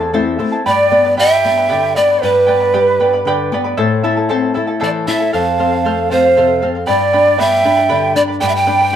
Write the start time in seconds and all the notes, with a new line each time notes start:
Already playing: E2 A4
0.00 E4 C5 A5
0.13 A3 C4 E4 A4 C5 E5 A5
0.39 A3 C4 E4 C5 E5 A5
0.52 E4 C5 A5
0.66 G2 G4 B4 D5 G5 B5
0.91 B3 B4 D5 G5 B5
1.05 B4 D5 B5
1.17 G3 G4 B4 D5 E5 G5 B5
1.44 B3 B4 D5 G5 B5
1.57 B4 D5 B5
1.69 D3 G4 B4 D5 G5 B5
1.96 B3 B4 D5 G5 B5
2.09 B4 D5 B5
2.22 G2 G4 B4 D5 G5 B5
2.47 B3 B4 D5 G5 B5
2.61 B4 D5 B5
2.74 G3 G4 B4 D5 G5 B5
3.00 B3 B4 D5 G5 B5
3.13 B4 D5 B5
3.25 D3 G4 B4 D5 G5 B5
3.52 B3 B4 D5 G5 B5
3.64 B4 D5 B5
3.77 A2 E4 A4 C5 E5 A5
4.04 E4 A4 E5 A5
4.17 E4 A4 A5
4.29 C4 E4 A4 C5 E5 A5
4.54 E4 A4 E5 A5
4.67 E4 A4 A5
4.80 E3 E4 A4 C5 D5 E5 A5
5.07 E4 A4 E5 A5
5.20 E4 A4 A5
5.32 F2 A4 C5 F5 A5
5.58 C4 A4 C5 F5
5.72 C5 F5
5.85 A3 A4 C5 F5
6.10 C4 A4 C5 F5
6.24 C5 F5
6.37 C3 A4 C5 F5
6.62 C4 A4 C5 F5
6.75 C5 F5
6.86 G2 G4 B4 D5 G5 B5
7.13 D4 B4 D5 G5 B5
7.26 B4 D5 B5
7.38 B3 G4 B4 D5 E5 G5 B5
7.64 D4 B4 D5 G5 B5
7.77 B4 D5 B5
7.89 D3 G4 B4 D5 G5 B5
8.15 D4 B4 D5 G5 B5
8.28 B4 D5 B5
8.40 G2 G4 B4 D5 G5 B5
8.49 E5 G5
8.55 G5
8.67 D4 B4 D5 G5 B5
8.79 B4 D5 B5